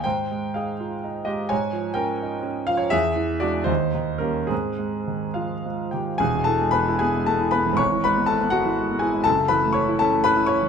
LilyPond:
<<
  \new Staff \with { instrumentName = "Grand piano" } { \time 6/8 \key aes \major \tempo 4. = 80 <c'' g''>4 <aes' f''>4. <g' ees''>8 | <des'' aes''>4 <bes' g''>4. f''16 des''16 | <gis' e''>4 <ges' d''>8 <ees' c''>4 <des' bes'>8 | <c' aes'>4. <f' f''>4 <g' g''>8 |
\key e \major <gis' gis''>8 <a' a''>8 <b' b''>8 <gis' gis''>8 <a' a''>8 <b' b''>8 | <cis'' cis'''>8 <b' b''>8 <a' a''>8 <fis' fis''>4 <gis' gis''>8 | <a' a''>8 <b' b''>8 <cis'' cis'''>8 <a' a''>8 <b' b''>8 <cis'' cis'''>8 | }
  \new Staff \with { instrumentName = "Grand piano" } { \clef bass \time 6/8 \key aes \major aes,8 aes8 ees'8 f'8 ees'8 aes8 | aes,8 f8 des'8 ees'8 des'8 f8 | e,8 e8 <gis d'>8 ees,8 ees8 <g bes>8 | aes,8 aes8 ees8 f8 aes8 ees8 |
\key e \major <e,, e,>16 b,16 e16 gis16 b16 e'16 b16 gis16 b16 e'16 b16 e16 | <gis,, gis,>16 e16 gis16 b16 e'16 b16 gis16 e16 gis16 b16 e'16 gis16 | <fis,, fis,>16 cis16 e16 a16 cis'16 e'16 cis'16 a16 cis'16 e'16 cis'16 e16 | }
>>